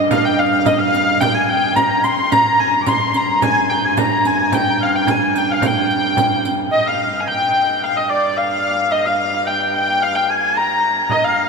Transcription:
Already playing: G2 D#5
0.11 F5, riq, frame drum
0.25 G5
0.39 F5, frame drum
0.66 D#5, riq, frame drum
0.78 F5
0.94 riq, frame drum
1.20 G5, riq, frame drum
1.34 G#5
1.49 G5, frame drum
1.76 A#5, riq, frame drum
2.04 C6, riq
2.32 G2 A#5, riq, frame drum
2.60 G#5, frame drum
2.74 A#5
2.81 D6
2.86 C6, riq, frame drum
3.14 A#5, riq, frame drum
3.42 G#5, riq, frame drum
3.70 G5, frame drum
3.84 G#5
3.97 A#5, riq, frame drum
4.25 G#5, riq, frame drum
4.52 G5, riq, frame drum
4.80 F5, frame drum
4.93 G5
5.07 G#5, riq, frame drum
5.35 G5, riq, frame drum
5.50 F5
5.62 G5, riq, frame drum
5.66 G5
5.90 riq, frame drum
6.17 riq, frame drum
6.45 riq
6.72 G2 D#5
6.86 F5
7.20 G#5
7.27 G5
7.83 F5
7.96 D#5
8.09 D5
8.37 F5
8.92 D#5
9.06 F5
9.46 G5
9.74 G5
10.02 F5
10.15 G5
10.29 G#5
10.57 A#5
11.10 G2 D#5, frame drum
11.24 F5
11.37 frame drum

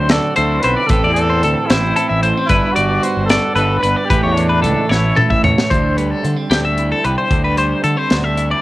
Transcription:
Already playing: D2 D3 F#3 C4 C5
0.09 F#4 A4 D5, snare, closed hi-hat
0.36 D2 E4 A4 C5, closed hi-hat
0.60 B1 C4 B4 C5, closed hi-hat
0.77 D5
0.87 A1 A2 A4 B4, kick, closed hi-hat
0.92 E3 C4 G4
1.03 E2 D5
1.13 E3 A4, closed hi-hat
1.30 C5
1.43 D2 C4 A4, closed hi-hat
1.67 A1 E4 C5, snare, closed hi-hat
1.71 C4
1.96 C4 A4, closed hi-hat
2.09 A1 E5
2.23 A3 C5, closed hi-hat
2.38 C4
2.46 G1 E4 B4, kick, closed hi-hat
2.50 G2 D4
2.72 F#4 D5, closed hi-hat
2.77 G1 G3
3.03 B3 C5, closed hi-hat
3.17 G1
3.26 A4, closed hi-hat
3.30 F#4 D5, snare
3.54 G1 D4 A4 B4, closed hi-hat
3.79 G1 B4
3.84 B3, closed hi-hat
3.96 D5
4.05 G4
4.10 A1 A2 A3 B4, kick, closed hi-hat
4.23 E2 C#5
4.34 D4, closed hi-hat
4.38 E3
4.49 B4
4.62 C#2 A3 A4, closed hi-hat
4.89 A1 E4 C#5, snare
4.93 A3
5.16 A3 A4, mid tom
5.30 A1 E5, kick
5.44 A3 C#5, floor tom
5.58 snare
5.70 D2 D3 C5, kick, closed hi-hat
5.97 G3 B4, closed hi-hat
6.11 A4
6.24 D3 A3, closed hi-hat
6.37 C4
6.50 D2 G4 A4, snare, closed hi-hat
6.65 E5
6.78 E4, closed hi-hat
6.92 A4
7.04 C2 G4 B4, closed hi-hat
7.18 C5
7.30 D2 D3, kick, closed hi-hat
7.44 B4
7.57 G3 C5, closed hi-hat
7.84 D3 A3 A4, closed hi-hat
7.97 C4 C5
8.10 D2 F#4, snare, closed hi-hat
8.24 A4 E5
8.37 E4, closed hi-hat
8.51 D5

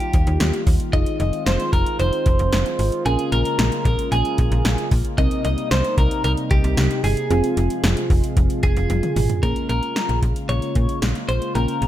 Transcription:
Already playing: D#3 G3 A#3 D#4 F4 G4
0.00 closed hi-hat
0.13 D#2, kick, closed hi-hat
0.27 D#2, closed hi-hat
0.40 D#2, snare, closed hi-hat
0.53 closed hi-hat
0.67 D#2, kick, open hi-hat
0.80 closed hi-hat
0.93 F1 G#3 C4 D#4 F4 G#4 D#5, kick, closed hi-hat
1.06 closed hi-hat
1.20 F1 D#5, closed hi-hat
1.33 closed hi-hat
1.46 F1 C5, snare, closed hi-hat
1.60 closed hi-hat
1.73 F1 A#4, kick, closed hi-hat
1.86 closed hi-hat
1.99 F1 C5, closed hi-hat
2.13 closed hi-hat
2.26 F1, kick, closed hi-hat
2.39 F1, closed hi-hat
2.52 F1, snare, closed hi-hat
2.66 closed hi-hat
2.79 G#1, open hi-hat
2.92 closed hi-hat
3.06 A#1 C#3 A#3 C#4 G#4 A#4, closed hi-hat
3.19 closed hi-hat
3.32 A#1 A#4, closed hi-hat
3.45 closed hi-hat
3.59 A#1, snare, closed hi-hat
3.72 closed hi-hat
3.85 A#1 A#4, kick, closed hi-hat
3.99 closed hi-hat
4.12 A#1 G#4, closed hi-hat
4.25 closed hi-hat
4.38 A#1, kick, closed hi-hat
4.52 A#1, closed hi-hat
4.65 A#1, snare, closed hi-hat
4.78 closed hi-hat
4.91 A#1, kick, open hi-hat
5.05 closed hi-hat
5.18 C2 C3 G3 C4 D#4 A#4 D#5, kick, closed hi-hat
5.31 closed hi-hat
5.45 C2 D#5, closed hi-hat
5.58 closed hi-hat
5.71 C2 C5, snare, closed hi-hat
5.84 closed hi-hat
5.98 C2 A#4, kick, closed hi-hat
6.11 closed hi-hat
6.24 C2 A#4, closed hi-hat
6.37 closed hi-hat
6.51 C2 G4, kick, closed hi-hat
6.64 C2, closed hi-hat
6.77 C2, snare, closed hi-hat
6.91 closed hi-hat
7.04 G1 G#4, open hi-hat
7.17 closed hi-hat
7.30 F1 F3 G#3 C4 F4 G#4, closed hi-hat
7.44 closed hi-hat
7.57 F1, closed hi-hat
7.70 closed hi-hat
7.84 F1, snare, closed hi-hat
7.97 closed hi-hat
8.10 F1, kick, open hi-hat
8.24 closed hi-hat
8.37 F1, kick, closed hi-hat
8.50 closed hi-hat
8.63 F1 G#4, kick, closed hi-hat
8.77 F1, closed hi-hat
8.90 F1, closed hi-hat, high tom
9.03 closed hi-hat, mid tom
9.16 G#1, mid tom, open hi-hat
9.29 closed hi-hat, floor tom
9.43 A#1 C#3 G#3 A#3 C#4 F4 G#4 A#4, kick, closed hi-hat
9.56 closed hi-hat
9.69 A#1 A#4, closed hi-hat
9.83 closed hi-hat
9.96 snare, closed hi-hat
10.09 A#1, closed hi-hat
10.22 A#1, kick, closed hi-hat
10.36 closed hi-hat
10.49 A#1 C#5, closed hi-hat
10.62 closed hi-hat
10.75 A#2, kick, closed hi-hat
10.89 closed hi-hat
11.02 A#1, snare, closed hi-hat
11.15 closed hi-hat
11.29 A#1 C5, closed hi-hat
11.42 closed hi-hat
11.55 A#1 A#3 C#4 A#4 G5, closed hi-hat
11.68 closed hi-hat
11.82 A#1, closed hi-hat

